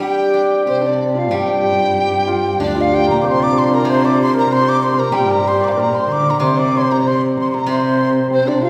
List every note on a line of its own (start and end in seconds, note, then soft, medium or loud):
0.00 1.30 G3 medium
0.00 0.66 C4 medium
0.00 0.81 D4 medium
0.00 1.33 G4 medium
0.00 0.63 G4 medium
0.00 0.62 G5 medium
0.34 1.64 D4 soft
0.66 1.32 C3 medium
0.66 4.67 C4 medium
0.66 1.97 G4 soft
0.66 0.84 C5 medium
0.66 0.88 C5 medium
0.81 2.60 D4 medium
0.81 1.16 D4 medium
0.87 1.19 D5 medium
1.15 1.31 F4 medium
1.15 2.27 F4 soft
1.15 1.37 F5 medium
1.31 2.61 G2 medium
1.31 3.23 G3 medium
1.31 2.64 G4 medium
1.31 1.41 G4 medium
1.35 2.62 G5 loud
1.42 1.47 G4 soft
1.48 1.55 G4 medium
1.55 1.62 G4 soft
1.63 1.71 G4 medium
1.71 1.79 G4 soft
1.79 1.85 G4 soft
1.86 1.93 G4 soft
1.93 2.00 G4 medium
2.00 2.07 G4 soft
2.07 2.12 G4 medium
2.12 5.11 G4 soft
2.27 2.74 F4 medium
2.60 3.12 D2 medium
2.60 4.48 D3 medium
2.60 6.33 D4 medium
2.60 2.79 D4 medium
2.60 2.83 D5 medium
2.75 6.12 F4 medium
2.75 2.94 F4 medium
2.81 2.96 F5 medium
2.93 3.26 G4 medium
2.93 3.09 G5 loud
3.07 3.25 A#2 medium
3.07 3.68 A#4 medium
3.07 3.20 A#5 medium
3.21 3.86 C3 medium
3.21 3.52 C5 medium
3.21 3.42 C5 medium
3.21 3.29 D6 medium
3.28 3.45 C6 loud
3.40 3.74 D5 medium
3.40 3.60 D6 loud
3.53 3.84 C5 medium
3.58 3.76 C6 medium
3.68 4.33 A#4 medium
3.72 3.87 A#4 medium
3.72 3.88 A#5 medium
3.80 4.00 D5 medium
3.85 5.76 C3 medium
3.85 4.45 C3 medium
3.85 4.15 C5 loud
3.85 4.05 C5 medium
3.92 4.07 C6 medium
4.01 4.62 D5 medium
4.01 4.34 D5 medium
4.05 4.19 D6 medium
4.15 4.47 C5 medium
4.22 4.34 C6 loud
4.34 4.93 A#4 medium
4.34 4.54 A#4 medium
4.39 4.55 A#5 medium
4.47 5.13 C3 medium
4.47 4.76 C5 medium
4.52 4.82 C5 medium
4.52 4.70 C6 loud
4.62 5.60 D5 medium
4.69 4.84 D6 loud
4.77 5.22 C5 medium
4.83 5.01 C5 medium
4.83 5.01 C6 loud
4.93 5.27 A#4 medium
4.99 5.14 A#4 medium
4.99 5.16 A#5 medium
5.12 5.76 G2 medium
5.12 7.05 G3 medium
5.12 8.26 G4 medium
5.12 5.33 G5 medium
5.16 5.44 G4 medium
5.23 5.45 C5 medium
5.27 5.77 A#4 medium
5.32 5.49 A#5 medium
5.45 6.41 C5 medium
5.45 5.79 C5 medium
5.45 5.66 C6 loud
5.61 5.68 D5 medium
5.61 5.70 D6 medium
5.68 6.59 D5 medium
5.68 5.73 F5 medium
5.68 5.81 D6 medium
5.77 6.07 A#2 medium
5.77 5.83 D4 soft
5.77 5.80 A#4 medium
5.77 5.85 A#4 medium
5.77 5.96 A#5 medium
5.82 5.86 F4 soft
5.82 5.92 A#4 soft
5.86 5.90 G4 soft
5.91 5.94 A#4 soft
5.91 6.00 A#4 medium
5.91 6.19 C5 medium
5.95 6.14 C6 medium
6.00 6.08 A#4 soft
6.08 6.43 D3 medium
6.08 6.15 A#4 medium
6.12 6.22 A#4 soft
6.12 6.32 D6 medium
6.23 6.29 A#4 medium
6.29 6.91 A#4 soft
6.29 6.39 A#5 medium
6.40 7.65 C3 medium
6.40 7.05 C3 medium
6.40 6.58 C5 medium
6.40 6.75 C5 medium
6.40 6.60 C6 medium
6.40 6.45 D6 medium
6.57 6.74 D5 medium
6.57 7.03 D5 medium
6.57 6.79 D6 medium
6.72 7.04 C5 medium
6.72 7.07 C5 medium
6.77 6.93 C6 medium
6.91 7.54 A#4 medium
6.91 7.09 A#5 medium
7.03 7.20 C3 medium
7.03 7.20 C5 medium
7.03 8.70 D5 medium
7.07 7.37 C5 medium
7.07 7.22 C6 medium
7.37 7.66 C3 medium
7.37 7.68 C5 medium
7.41 7.50 C6 medium
7.51 8.70 A#4 medium
7.51 7.69 A#5 medium
7.51 7.55 C6 medium
7.66 8.70 C3 medium
7.66 8.27 C3 medium
7.66 8.27 C5 medium
7.66 8.70 C5 medium
7.71 8.10 C6 medium
8.30 8.70 C3 medium
8.30 8.70 C4 medium
8.30 8.50 C5 medium
8.45 8.70 D4 medium
8.45 8.65 D4 medium
8.45 8.63 D5 medium
8.62 8.70 F4 medium
8.62 8.70 F5 medium